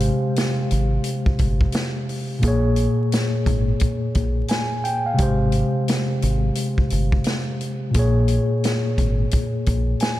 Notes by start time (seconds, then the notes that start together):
Already playing: C3 G#3 G4 C5
0.00 closed hi-hat
0.36 snare, closed hi-hat
0.71 G#1, closed hi-hat
1.04 closed hi-hat
1.26 kick
1.39 G1, kick, closed hi-hat
1.61 kick
1.72 snare, closed hi-hat
2.09 open hi-hat
2.39 A#2 A#3, closed hi-hat
2.43 A#1 G#4, kick
2.48 C#5
2.76 closed hi-hat
3.12 snare, closed hi-hat
3.46 G#1, kick, closed hi-hat
3.80 kick, closed hi-hat
4.15 A#1, kick, closed hi-hat
4.48 G#5, snare, closed hi-hat
4.84 G5, closed hi-hat
5.06 F5
5.14 C3 G#3
5.18 G#1 G4, kick, closed hi-hat
5.22 C5
5.52 closed hi-hat
5.88 snare, closed hi-hat
6.22 G#1, closed hi-hat
6.55 closed hi-hat
6.78 kick
6.90 G1, closed hi-hat
7.12 kick
7.24 snare, closed hi-hat
7.61 closed hi-hat
7.91 A#2 A#3, closed hi-hat
7.95 A#1 G#4, kick
7.99 C#5
8.28 closed hi-hat
8.64 snare, closed hi-hat
8.98 G#1, kick, closed hi-hat
9.31 kick, closed hi-hat
9.66 A#1, kick, closed hi-hat
10.00 G#5, snare, closed hi-hat